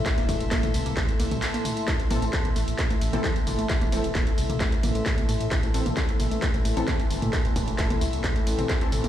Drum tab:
RD |xxxxxxxxxxxxxxxx|xxxxxxxxxxxxxxxx|xxxxxxxxxxxxxxxx|xxxxxxxxxxxxxxxx|
HH |xooxxxoxxxoxxxox|xxoxxxoxxxoxxxox|xxoxxxoxxxoxxxox|xxoxxxoxxxoxxxox|
TB |xxxxxxxxxxxxxxxx|xxxxx-xxxxxxxxxx|xxxxx-xxxxxxxxxx|xxxxx-xxxxxxxxxx|
CP |x---x---x---x---|x---x---x---x---|x---x---x---x---|x---x---x---x---|
T2 |--o--o--o--o--o-|--o--o--o--o--o-|-o--o--o--o--o--|o--o--o--o--o--o|
BD |o-o-o---o-------|o---o---o---o---|o---o---o---o---|o---o---o---o---|

RD |xxxxxxxxxxxxxxxx|
HH |xxoxxxoxxxoxxxox|
TB |xxxxxxxxxxxxxxxx|
CP |x---x---x---x---|
T2 |--o--o--o--o--o-|
BD |o-o-o---o---o---|